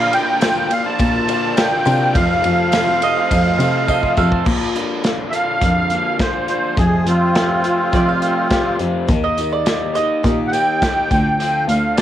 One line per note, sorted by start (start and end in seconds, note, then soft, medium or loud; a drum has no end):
0.00 0.12 A#2 medium
0.00 0.10 D3 medium
0.00 0.13 F3 medium
0.00 0.13 A#3 medium
0.00 0.12 D4 medium
0.00 0.10 F4 medium
0.00 4.42 F4 medium
0.00 2.11 A#4 medium
0.00 2.12 D5 medium
0.00 0.14 F5 loud
0.00 2.11 F5 medium
0.11 0.41 D3 medium
0.11 0.41 A#3 soft
0.11 0.41 D4 soft
0.11 0.41 F4 soft
0.11 0.73 G5 loud
0.11 ride medium
0.11 tambourine soft
0.41 0.85 A#2 loud
0.41 0.69 D3 medium
0.41 1.56 F3 medium
0.41 1.28 A#3 medium
0.41 1.27 D4 medium
0.41 1.27 F4 medium
0.41 snare loud
0.41 ride medium
0.41 tambourine medium
0.56 0.70 A#3 medium
0.56 0.70 D4 medium
0.56 0.71 F4 medium
0.70 0.86 F5 loud
0.70 muted overdriven electric guitar stroke soft
0.70 ride medium
0.70 tambourine medium
0.84 1.27 A#3 medium
0.84 1.28 D4 medium
0.84 1.29 F4 medium
0.84 1.59 A5 loud
0.99 1.69 A#2 medium
0.99 kick medium
0.99 ride medium
0.99 tambourine medium
1.27 1.55 D3 medium
1.27 1.57 A#3 soft
1.27 1.57 D4 medium
1.27 1.56 F4 medium
1.27 ride medium
1.27 tambourine medium
1.56 2.00 A#2 medium
1.56 1.84 D3 loud
1.56 1.85 F3 medium
1.56 1.86 A#3 medium
1.56 1.86 D4 medium
1.56 1.84 F4 medium
1.56 2.16 G5 medium
1.56 snare loud
1.56 ride loud
1.56 tambourine loud
1.71 1.85 A#3 medium
1.71 1.85 D4 medium
1.71 1.87 F4 medium
1.85 2.09 C3 loud
1.85 2.12 D3 medium
1.85 2.15 A#3 soft
1.85 2.15 D4 soft
1.85 2.14 F4 medium
1.85 ride medium
1.85 tambourine medium
1.99 2.14 A#3 medium
1.99 2.13 D4 medium
1.99 2.15 F4 medium
2.14 2.43 F2 medium
2.14 2.38 F2 loud
2.14 2.43 C3 medium
2.14 2.44 F3 medium
2.14 2.44 A3 medium
2.14 2.43 C4 medium
2.14 2.41 F4 medium
2.14 4.44 A4 medium
2.14 4.44 C5 medium
2.14 4.13 F5 medium
2.14 4.44 A5 medium
2.14 kick loud
2.14 ride loud
2.14 tambourine soft
2.43 3.13 F2 medium
2.43 2.71 F3 soft
2.43 2.72 A3 soft
2.43 2.73 C4 medium
2.43 2.72 F4 medium
2.43 ride medium
2.43 tambourine soft
2.72 3.15 F2 medium
2.72 3.16 C3 medium
2.72 3.59 F3 medium
2.72 3.59 A3 medium
2.72 3.58 C4 medium
2.72 3.57 F4 medium
2.72 snare loud
2.72 ride loud
2.72 tambourine medium
2.87 3.01 F3 medium
2.87 3.01 A3 medium
2.87 3.01 C4 medium
2.87 3.02 F4 medium
3.02 3.86 D#5 medium
3.02 muted overdriven electric guitar stroke soft
3.02 ride medium
3.02 tambourine medium
3.16 3.58 F3 medium
3.16 3.59 A3 medium
3.16 3.59 C4 medium
3.16 3.60 F4 medium
3.31 3.54 F2 medium
3.31 kick medium
3.31 ride loud
3.31 tambourine medium
3.58 4.05 C3 medium
3.58 3.86 F3 soft
3.58 3.88 A3 medium
3.58 3.88 C4 medium
3.58 3.88 F4 medium
3.58 ride medium
3.58 tambourine medium
3.87 4.31 F2 loud
3.87 4.31 C3 medium
3.87 4.16 F3 medium
3.87 4.17 A3 medium
3.87 4.16 C4 medium
3.87 4.15 F4 medium
3.87 4.16 D#5 medium
3.87 kick medium
3.87 tambourine medium
4.03 4.16 F3 medium
4.03 4.17 A3 medium
4.03 4.17 C4 medium
4.03 4.18 F4 medium
4.03 kick medium
4.17 4.40 F2 loud
4.17 4.44 F3 soft
4.17 4.46 A3 medium
4.17 4.46 C4 medium
4.17 4.45 F4 medium
4.17 4.44 A4 medium
4.17 4.45 F5 medium
4.17 kick medium
4.17 tambourine medium
4.31 4.45 F3 medium
4.31 4.44 A3 medium
4.31 4.44 C4 medium
4.31 4.44 F4 medium
4.31 kick medium
4.45 4.74 A#2 medium
4.45 5.38 A#2 medium
4.45 4.74 F3 medium
4.45 4.75 A#3 medium
4.45 4.73 D4 medium
4.45 4.72 F4 medium
4.45 kick loud
4.45 crash loud
4.73 5.60 D3 medium
4.73 5.02 A#3 soft
4.73 5.03 D4 soft
4.73 5.03 F4 medium
4.73 closed hi-hat medium
5.02 5.61 F3 medium
5.02 5.60 A#3 medium
5.02 5.61 D4 medium
5.02 5.62 F4 medium
5.02 snare medium
5.02 closed hi-hat medium
5.30 6.48 D4 medium
5.30 5.33 E5 medium
5.30 closed hi-hat medium
5.34 6.17 F5 loud
5.60 5.85 F2 medium
5.60 6.19 A#2 medium
5.60 6.77 D3 medium
5.60 6.17 F3 medium
5.60 6.18 A#3 medium
5.60 6.20 D4 medium
5.60 6.20 F4 medium
5.60 kick medium
5.60 closed hi-hat medium
5.90 6.78 A#3 medium
5.90 closed hi-hat medium
6.18 6.48 F3 medium
6.18 6.48 A#3 medium
6.18 6.48 D4 medium
6.18 6.47 F4 medium
6.18 6.47 C5 medium
6.18 kick medium
6.18 snare loud
6.18 closed hi-hat medium
6.48 6.78 A#3 soft
6.48 6.78 D4 soft
6.48 6.77 F4 soft
6.48 6.76 C5 medium
6.48 closed hi-hat medium
6.77 7.06 F2 medium
6.77 7.00 F2 loud
6.77 7.06 C3 medium
6.77 7.05 F3 medium
6.77 7.06 G3 medium
6.77 7.07 A3 medium
6.77 7.06 C4 medium
6.77 7.05 F4 medium
6.77 7.06 G#4 medium
6.77 kick loud
6.77 closed hi-hat medium
7.06 7.76 F2 medium
7.06 7.91 F3 medium
7.06 7.33 G3 soft
7.06 7.35 A3 soft
7.06 8.76 C4 medium
7.06 7.35 C4 soft
7.06 7.35 F4 medium
7.06 8.77 F4 loud
7.06 closed hi-hat medium
7.35 7.64 A3 medium
7.35 7.64 C4 medium
7.35 7.62 F4 medium
7.35 snare loud
7.35 closed hi-hat medium
7.64 7.92 G3 soft
7.64 7.92 A3 soft
7.64 7.93 C4 soft
7.64 7.93 F4 soft
7.64 closed hi-hat medium
7.92 8.50 F2 medium
7.92 8.51 C3 medium
7.92 9.08 F3 medium
7.92 8.62 F3 medium
7.92 8.49 G3 medium
7.92 8.50 A3 medium
7.92 8.51 C4 medium
7.92 8.51 F4 loud
7.92 8.07 D5 medium
7.92 kick medium
7.92 closed hi-hat medium
8.09 9.20 F5 medium
8.22 9.09 A3 medium
8.22 closed hi-hat medium
8.50 8.80 G3 medium
8.50 8.80 A3 medium
8.50 8.79 C4 medium
8.50 8.78 F4 medium
8.50 9.09 G4 medium
8.50 kick medium
8.50 snare loud
8.50 closed hi-hat medium
8.79 8.91 F2 medium
8.79 9.07 G3 soft
8.79 9.08 A3 soft
8.79 9.09 C4 medium
8.79 9.08 F4 medium
8.79 closed hi-hat medium
9.07 10.02 D#2 medium
9.07 9.37 D#3 medium
9.07 9.38 A#3 medium
9.07 9.37 D#4 medium
9.07 9.35 G4 medium
9.07 kick loud
9.07 closed hi-hat medium
9.07 tambourine medium
9.24 9.52 D#5 medium
9.37 10.23 D#3 medium
9.37 9.66 A#3 soft
9.37 9.66 D#4 soft
9.37 9.66 G4 medium
9.37 closed hi-hat medium
9.37 tambourine medium
9.53 9.94 D5 medium
9.65 9.95 D#3 medium
9.65 9.95 A#3 medium
9.65 9.94 D#4 medium
9.65 9.93 G4 medium
9.65 snare loud
9.65 closed hi-hat medium
9.65 tambourine medium
9.94 10.23 A#3 medium
9.94 10.24 D#4 soft
9.94 10.24 G4 medium
9.94 10.38 D#5 medium
9.94 closed hi-hat medium
9.94 tambourine soft
10.23 10.48 A#2 loud
10.23 10.80 D#3 medium
10.23 10.81 A#3 medium
10.23 10.82 D#4 medium
10.23 10.83 G4 medium
10.23 kick medium
10.23 closed hi-hat medium
10.48 10.52 F#5 medium
10.52 11.11 A#3 medium
10.52 11.65 G5 loud
10.52 closed hi-hat medium
10.52 tambourine medium
10.81 11.11 D#3 medium
10.81 11.11 A#3 medium
10.81 11.11 G4 medium
10.81 kick medium
10.81 snare loud
10.81 closed hi-hat medium
10.81 tambourine medium
11.10 11.58 D2 loud
11.10 11.38 D3 medium
11.10 11.39 A3 soft
11.10 11.40 C4 soft
11.10 11.40 F4 soft
11.10 kick medium
11.10 closed hi-hat medium
11.10 tambourine medium
11.39 11.69 D3 medium
11.39 11.69 F3 medium
11.39 11.69 A3 medium
11.39 11.69 C4 medium
11.39 11.67 F4 medium
11.39 closed hi-hat loud
11.39 tambourine medium
11.68 12.02 D2 loud
11.68 12.02 D3 medium
11.68 11.97 A3 soft
11.68 11.98 C4 medium
11.68 11.98 F4 soft
11.68 11.97 F5 medium
11.68 closed hi-hat medium
11.68 tambourine medium
11.96 12.02 F3 medium
11.96 12.02 A3 medium
11.96 12.02 D5 medium
11.96 snare loud
11.96 closed hi-hat medium
11.96 tambourine medium